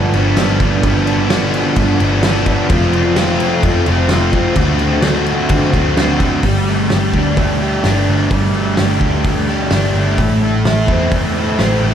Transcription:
Already playing: G2 D3 F3 B3 D4
0.13 G1 F3 B3 D4, crash
0.36 G2 D3 F3 B3 D4, snare, crash
0.59 F3 B3 D4, kick, crash
0.83 G1 G2 D3 F3 B3 D4, kick, crash
1.06 F3 B3 D4, crash
1.28 D3 F3 B3 D4, snare, crash
1.54 crash
1.76 G2, kick, crash
1.99 G1 F3 B3 D4, crash
2.23 G2 D3 F3 B3 D4, snare, crash
2.46 F3 B3 D4, kick, crash
2.69 F1 F3 A3 C4 F4, kick, crash
2.93 A3 C4 F4, crash
3.16 F3 A3 C4 F4, snare, crash
3.40 crash
3.63 F2, kick, crash
3.86 F1 C4 F4, crash
3.91 A3
4.09 F3 A3 C4, snare, crash
4.13 F4
4.32 A3 C4 F4, kick, crash
4.56 D2 D3 A3 C4 F#4, kick, crash
4.78 A3 C4 F#4, crash
5.02 D3 A3 C4, snare, crash
5.07 F#4
5.26 crash
5.49 D3, kick, crash
5.73 D2 A3 C4 F#4, kick, crash
5.97 D3 A3 C4 F#4, snare, crash
6.20 C4 F#4, kick, crash
6.25 A3
6.43 G1 G3, kick, open hi-hat
6.68 A3
6.90 G1 G4, snare, open hi-hat
7.13 D2 D4, kick
7.37 A3, kick, open hi-hat
7.62 G4
7.84 G1 D4, snare, open hi-hat
8.08 G1 A3
8.31 G1 G3, kick, open hi-hat
8.55 A3
8.77 G1 G4, snare, open hi-hat
9.00 D2 D4, kick
9.25 A3, kick, open hi-hat
9.49 G4
9.71 G1 D4, snare, open hi-hat
9.94 G1 A3
10.18 A1 A2, kick, open hi-hat
10.43 A3
10.65 A1 E4, snare, open hi-hat
10.88 E2 C4, kick
11.12 A3, kick, open hi-hat
11.38 E4
11.59 A1 C4, snare, open hi-hat
11.83 A1 A3

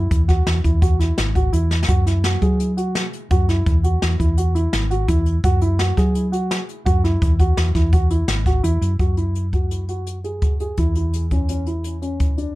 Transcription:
Already playing: E4
0.11 E2, kick, closed hi-hat
0.28 F#4, kick, snare, closed hi-hat
0.47 E2, snare, closed hi-hat
0.64 E2 E4, kick, closed hi-hat
0.82 F#4, kick, closed hi-hat
0.99 E4, snare, closed hi-hat
1.18 G#1, snare, closed hi-hat
1.35 F#4, kick, closed hi-hat
1.52 E2 E4, closed hi-hat
1.71 snare
1.83 snare
1.88 F#2 F#4, kick, closed hi-hat
2.06 E4, snare, closed hi-hat
2.24 F#4, snare, closed hi-hat
2.42 F#3 G#4, kick, closed hi-hat
2.60 closed hi-hat
2.77 F#4, closed hi-hat
2.95 snare, closed hi-hat
3.13 closed hi-hat
3.31 F#2 F#4, kick, closed hi-hat
3.49 E4, snare, closed hi-hat
3.66 E2, kick, closed hi-hat
3.84 F#4, closed hi-hat
4.02 E2, snare, closed hi-hat
4.19 E2 E4, kick, closed hi-hat
4.37 F#4, closed hi-hat
4.55 E4, closed hi-hat
4.73 G#1, snare, closed hi-hat
4.90 F#4, closed hi-hat
5.08 E2 E4, kick, closed hi-hat
5.26 closed hi-hat
5.44 F#2 F#4, kick, closed hi-hat
5.61 E4, closed hi-hat
5.79 F#4, snare, closed hi-hat
5.97 F#3 G#4, kick, snare, closed hi-hat
6.15 closed hi-hat
6.32 F#4, closed hi-hat
6.51 snare, closed hi-hat
6.69 closed hi-hat
6.85 F#2 F#4, kick, closed hi-hat
7.04 E4, snare, closed hi-hat
7.22 E2, kick, closed hi-hat
7.39 F#4, kick, closed hi-hat
7.57 E2, snare, closed hi-hat
7.75 E2 E4, kick, snare, closed hi-hat
7.93 F#4, kick, closed hi-hat
8.10 E4, closed hi-hat
8.28 G#1, snare, closed hi-hat
8.46 F#4, kick, snare, closed hi-hat
8.63 E2 E4, closed hi-hat
8.81 F#2, closed hi-hat
8.99 F#2 F#4, kick, closed hi-hat
9.17 E4, closed hi-hat
9.35 closed hi-hat
9.53 F#4, kick, closed hi-hat
9.71 closed hi-hat
9.89 F#4, closed hi-hat
10.07 closed hi-hat
10.24 G#4, closed hi-hat
10.42 kick, closed hi-hat
10.60 G#4, closed hi-hat
10.77 E2 E4, kick, closed hi-hat
10.95 E4, closed hi-hat
11.13 closed hi-hat
11.31 C#4, kick, closed hi-hat
11.49 C#4, closed hi-hat
11.66 E4, closed hi-hat
11.84 closed hi-hat
12.02 C#4, closed hi-hat
12.20 kick, closed hi-hat
12.38 D4, closed hi-hat

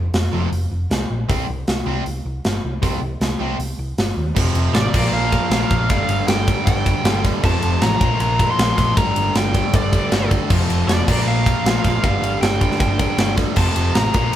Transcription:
0.14 F1, snare, open hi-hat
0.32 F1 F2 C3 F3
0.52 F1, open hi-hat
0.71 F1
0.90 C2, snare, open hi-hat
1.10 A#1
1.29 C2 C3 G3 C4, kick, open hi-hat
1.49 C2
1.68 C2, snare, open hi-hat
1.86 C2 C3 G3 C4
2.06 C2, open hi-hat
2.25 C2
2.45 G1, snare, open hi-hat
2.64 C2
2.82 C2 C3 G3 C4, kick, open hi-hat
3.02 C2
3.20 C2, snare, open hi-hat
3.39 C2 C3 G3 C4
3.59 C2, open hi-hat
3.79 C2
3.98 G1, snare, open hi-hat
4.17 D#2
4.35 F1 F2 C3 F3 C4 G4, kick, crash
4.54 F1, ride
4.74 A1 D5, snare, ride
4.93 A#1 A#2 F3 A#3 F4 C5, kick, crash
5.04 snare
5.12 A#1 F5
5.32 kick, ride
5.50 A#1 A#2 F3 A#3, snare, ride
5.70 A#1, kick, ride
5.88 G1 G2 D3 G3 D4 A4 F5, kick, ride
6.08 G1, ride
6.27 G1 G5, snare, ride
6.47 G2 D3 G3, kick, ride
6.66 G1 G5, kick, ride
6.85 G2 D3 G3, kick, ride
7.04 G1 G2 D3 G3, snare, ride
7.25 kick, snare, ride
7.42 F1 F2 C3 F3 C4 G4 A5, kick, crash
7.62 F1, ride
7.81 A1 A#5, snare, ride
7.99 A#1 A#2 F3 A#3 F4 C5, kick, ride
8.20 A#1 A#5, ride
8.39 kick, ride
8.51 C6
8.57 A#1 A#2 F3 A#3, snare, ride
8.78 A#1 C6, kick, snare, ride
8.95 G1 G2 D3 G3 A3 D4 A#5, kick, ride
9.16 G1, ride
9.35 G1 G5, snare, ride
9.52 G2 D3 G3, kick, ride
9.73 G1 D5, kick, ride
9.93 G2 D3 G3, kick, ride
10.11 G1 G2 D3 G3, snare, ride
10.31 kick, ride
10.49 F1 F2 C3 F3 C4 G4, kick, crash
10.69 F1, ride
10.87 F1 D5, snare, ride
11.07 A#1 A#2 F3 A#3 F4 C5, kick, crash
11.19 snare
11.26 A#1 F5
11.46 kick, ride
11.64 A#1 A#2 F3 A#3, snare, ride
11.84 A#1, kick, snare, ride
12.03 G1 G2 D3 G3 D4 A4 F5, kick, ride
12.22 G1, ride
12.41 G1 G5, snare, ride
12.59 G2 D3 G3, kick, ride
12.71 snare
12.80 G1 G5, kick, ride
12.99 G2 D3 G3, kick, ride
13.17 G1 G2 D3 G3, snare, ride
13.37 kick, snare, ride
13.56 F1 F2 C3 F3 C4 G4 A5, kick, crash
13.76 F1, ride
13.95 A1 A#5, snare, ride
14.13 A#1 A#2 F3 A#3 F4 C5, kick, ride

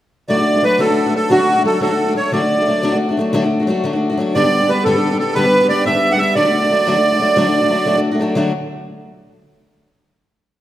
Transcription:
0.28 D3 F#3 A3 D4 F#4 D5
0.37 A3 D4 F#4
0.54 A3 D4 F#4
0.63 F#3 A3 D4 F#4 B4
0.78 D3 F#3 A3 D4 F#4 A4
0.87 A3 D4 F#4
1.06 A3 D4 F#4
1.14 F#3 A3 D4 F#4 A4
1.30 D3 F#3 A3 D4 F#4
1.40 A3 D4 F#4
1.56 A3 D4 F#4
1.64 F#3 A3 D4 F#4 A4
1.80 D3 F#3 A3 D4 F#4 A4
1.89 A3 D4 F#4
2.06 A3 D4 F#4
2.15 F#3 A3 D4 F#4 C#5
2.32 D3 F#3 A3 D4 F#4 D5
2.40 A3 D4 F#4
2.58 A3 D4 F#4
2.66 F#3 A3 D4 F#4
2.82 D3 F#3 A3 D4 F#4
2.92 A3 D4 F#4
3.09 A3 D4 F#4
3.17 F#3 A3 D4 F#4
3.33 D3 F#3 A3 D4 F#4
3.42 A3 D4 F#4
3.60 A3 D4 F#4
3.67 F#3 A3 D4 F#4
3.84 D3 F#3 A3 D4 F#4
3.93 A3 D4 F#4
4.10 A3 D4 F#4
4.18 F#3 A3 D4 F#4
4.35 G2 D3 G3 B3 D4 G4 D5
4.43 G3 B3 D4 G4
4.61 G3 B3 D4 G4
4.69 G3 B3 D4 G4 B4
4.85 G2 D3 G3 B3 D4 G4 A4
4.94 G3 B3 D4 G4
5.11 G3 B3 D4 G4
5.19 G3 B3 D4 G4 A4
5.34 G2 D3 G3 B3 D4 G4 B4
5.44 G3 B3 D4 G4
5.61 G3 B3 D4 G4
5.69 G3 B3 D4 G4 D5
5.85 G2 D3 G3 B3 D4 G4 E5
5.93 G3 B3 D4 G4
6.11 G3 B3 D4 G4 F#5
6.19 G3 B3 D4 G4 E5
6.35 D3 F#3 A3 D4 F#4 D5
6.45 A3 D4 F#4
6.62 A3 D4 F#4
6.70 F#3 A3 D4 F#4
6.86 D3 F#3 A3 D4 F#4
6.95 A3 D4 F#4
7.12 A3 D4 F#4
7.19 F#3 A3 D4 F#4
7.36 D3 F#3 A3 D4 F#4
7.45 A3 D4 F#4
7.61 A3 D4 F#4
7.69 F#3 A3 D4 F#4
7.85 D3 F#3 A3 D4 F#4
7.94 A3 D4 F#4
8.11 A3 D4 F#4
8.19 F#3 A3 D4 F#4
8.35 D3 F#3 A3 D4 F#4

